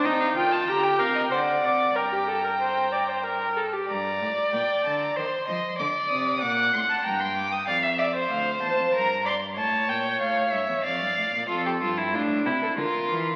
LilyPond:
<<
  \new Staff \with { instrumentName = "Violin" } { \time 3/4 \key g \minor \tempo 4 = 94 g''2 fis''4 | bes''2~ bes''8 r8 | bes''4 g''8 a''16 bes''16 c'''4 | d'''8 ees'''8 d'''8 c'''16 a''16 bes''16 c'''16 d'''16 ees'''16 |
d''8 e''8 f''8 a''8 bes''8 c'''8 | a''8 g''8 f''8 e''8 d''4 | \key f \major a'4 f'8 g'16 a'16 bes'4 | }
  \new Staff \with { instrumentName = "Violin" } { \time 3/4 \key g \minor ees''16 f''16 g''16 a''16 bes''16 g''16 f''16 ees''16 d''4 | g''2~ g''8 r8 | d''2 c''8 ees''8 | d''4 fis''4 g''4 |
f''16 e''16 d''16 c''4~ c''16 bes'8 d''8 | cis''2 f''4 | \key f \major f'16 g'16 f'16 e'16 d'8 e'8 f'4 | }
  \new Staff \with { instrumentName = "Viola" } { \time 3/4 \key g \minor ees'8 f'8 g'8 bes'8 c''8 d''8 | bes'16 g'16 a'16 bes'16 c''8 d''16 c''16 bes'8 a'16 g'16 | r2. | r2. |
r2. | r2. | \key f \major r2. | }
  \new Staff \with { instrumentName = "Cello" } { \clef bass \time 3/4 \key g \minor c8 ees8 d8 c8 d8 c8 | g,2~ g,8 r8 | g,8 a,8 bes,8 d8 ees8 f8 | d8 c8 bes,8 a,8 g,4 |
f,4 d,8 e,16 f,16 g,4 | a,8 bes,8 a,8 g,16 e,16 f,16 g,16 a,16 bes,16 | \key f \major f,8 g,8 a,8 c8 d8 e8 | }
>>